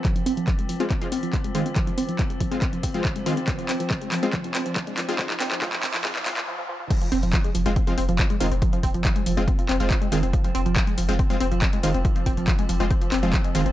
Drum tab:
CC |----------------|----------------|----------------|----------------|
HH |xxoxxxoxxxoxxxox|xxoxxxoxxxoxxxox|xxoxxxoxxxoxxxox|xxoxxxoxxxox----|
CP |x---x---x---x---|x---x---x---x---|x-x-x-x-x-x-x-x-|xxxxxxxxxxxx----|
BD |o---o---o---o---|o---o-o-o-o-o---|o---o---o---o---|o---o-o-o-o-----|

CC |x---------------|----------------|----------------|----------------|
HH |xxoxxxoxxxoxxxox|xxoxxxoxxxoxxxox|xxoxxxoxxxoxxxox|xxoxxxoxxxoxxxox|
CP |----x-------x---|----x-----x-x---|----x-------x---|----x-----x-x---|
BD |o---o---o---o---|o-o-o---o---o---|o---o---o---o---|o-o-o---o---o---|